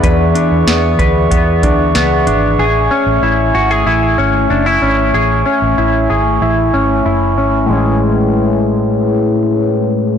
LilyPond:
<<
  \new Staff \with { instrumentName = "Glass harmonica" } { \time 4/4 \key a \major \tempo 4 = 94 << { cis'''1~ | cis'''1~ | cis'''1 | <gis e' gis' b' cis''>1 | } \\ { <gis' d'' e''>1 | <a gis''>1~ | <a gis''>1 | r1 | } >> }
  \new Staff \with { instrumentName = "Clean electric guitar" } { \time 4/4 \key a \major <e, b d' b'>8 d'8 b8 b'8 b8 d'8 b8 d'8 | gis'8 cis'8 e'8 fis'16 gis'16 e'8 cis'8 d'16 e'16 cis'8 | gis'8 cis'8 e'8 gis'8 e'8 cis'8 e'8 cis'8 | <a, gis cis' e' gis'>1 | }
  \new Staff \with { instrumentName = "Fingered electric bass" } { \clef bass \time 4/4 \key a \major e,8 r16 e,16 e,8 d,8 e,8 d,8 cis,8 gis,,8 | a,,8 r16 a,,16 a,,8 gis,,8 a,,8 gis,,8 fis,,8 gis,,8 | a,,8 r16 a,,16 a,,8 gis,,8 a,,8 gis,,8 fis,,8 gis,,8 | a,,1 | }
  \new DrumStaff \with { instrumentName = "Drums" } \drummode { \time 4/4 <hh bd>8 hh8 <hh sn>8 <hh bd>8 <hh bd>8 <hh bd>8 <hh sn>8 hh8 | r4 r4 r4 r4 | r4 r4 r4 r4 | r4 r4 r4 r4 | }
>>